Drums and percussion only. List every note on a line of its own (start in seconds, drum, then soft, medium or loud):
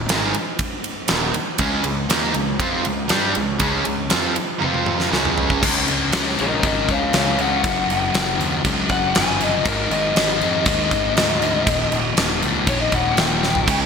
0.09 snare loud
0.09 ride loud
0.34 ride medium
0.59 kick medium
0.59 ride medium
0.84 ride medium
1.08 snare loud
1.08 ride loud
1.34 ride medium
1.58 kick loud
1.58 ride loud
1.84 ride medium
2.10 snare loud
2.10 ride loud
2.34 ride medium
2.60 kick loud
2.60 ride medium
2.85 ride medium
3.09 snare loud
3.09 ride medium
3.35 ride medium
3.60 kick loud
3.60 ride medium
3.85 ride medium
4.10 snare loud
4.10 ride medium
4.36 ride medium
4.62 high tom medium
4.74 high tom medium
4.86 mid tom medium
5.00 snare medium
5.13 snare medium
5.25 mid tom medium
5.38 floor tom medium
5.50 kick medium
5.63 kick loud
5.63 crash loud
5.63 crash medium
5.88 crash medium
6.12 snare loud
6.12 crash medium
6.38 crash medium
6.63 kick loud
6.63 crash medium
6.88 kick medium
6.88 crash medium
7.13 snare loud
7.13 crash medium
7.38 crash medium
7.64 kick loud
7.64 crash medium
7.90 crash medium
8.14 snare loud
8.14 crash medium
8.40 crash medium
8.65 kick loud
8.65 crash medium
8.89 kick medium
8.89 crash medium
9.15 snare loud
9.15 crash medium
9.40 crash medium
9.65 kick loud
9.65 crash medium
9.91 crash medium
10.16 snare loud
10.16 crash medium
10.41 crash medium
10.66 kick loud
10.66 crash medium
10.91 kick medium
10.91 crash medium
11.17 snare loud
11.17 crash medium
11.42 crash medium
11.67 kick loud
11.67 crash medium
11.92 crash medium
12.17 snare loud
12.17 crash medium
12.42 crash medium
12.67 kick loud
12.67 crash medium
12.92 kick medium
12.92 crash medium
13.17 snare loud
13.17 crash medium
13.43 snare medium
13.55 floor tom medium
13.68 kick loud
13.68 splash medium
13.68 crash medium